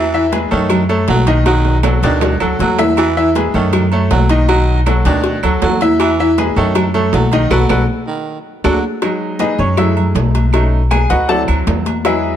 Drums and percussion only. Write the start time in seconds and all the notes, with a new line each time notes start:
0.14 high conga
0.33 cowbell, high conga, low timbale, low agogo
0.51 low agogo
0.69 cowbell, high conga, low conga, low agogo, claves
0.90 high conga, low agogo
1.08 cowbell, high conga, low timbale
1.27 cowbell, high conga, low agogo
1.46 cowbell, high conga, high timbale, low agogo, claves
1.65 high conga, high timbale
1.83 cowbell, high conga, high timbale, low agogo, claves
2.02 cowbell, high conga, low agogo
2.21 cowbell, high conga, low timbale
2.40 high conga, low agogo, claves
2.59 cowbell, high conga
2.79 cowbell, high conga, low timbale, low agogo
2.97 cowbell, high conga, low agogo, claves
3.16 high conga
3.35 cowbell, high conga, low timbale, low agogo
3.54 high conga, low agogo
3.73 cowbell, high conga, low conga, low agogo, claves
3.92 high conga, low agogo
4.11 cowbell, high conga, low timbale
4.29 cowbell, high conga, low agogo
4.49 cowbell, low agogo, claves
4.86 cowbell, high conga, low timbale, low agogo, claves
5.05 cowbell, high conga, low agogo
5.24 cowbell, high conga
5.43 high conga, low agogo, claves
5.62 cowbell, high conga, low timbale
5.81 cowbell, high conga, low agogo
6.00 cowbell, high conga, low agogo, claves
6.20 high conga
6.38 cowbell, high conga, low timbale, low agogo
6.57 low agogo
6.75 cowbell, high conga, low conga, low agogo, claves
6.94 high conga, low conga, low agogo
7.13 cowbell, high conga, low timbale
7.32 cowbell, high conga, low agogo
7.51 cowbell, high conga, high timbale, claves
7.69 cowbell, high conga, high timbale, claves
8.64 cowbell, high conga, high timbale, claves
9.01 cowbell, high conga, low agogo, claves
9.21 high conga
9.39 cowbell, high conga, low timbale, low agogo
9.59 low agogo
9.77 cowbell, high conga, low conga, low agogo, claves
9.97 high conga, low conga, low agogo
10.15 cowbell, high conga, low timbale
10.35 cowbell, high conga, low agogo
10.53 cowbell, high conga, low agogo, claves
10.73 high conga
10.91 cowbell, high conga, low timbale, low agogo, claves
11.10 cowbell, low agogo
11.29 cowbell, high conga
11.48 low agogo, claves
11.67 cowbell, high conga, low timbale
11.86 cowbell, high conga, low agogo
12.04 cowbell, high conga, low agogo, claves
12.23 high conga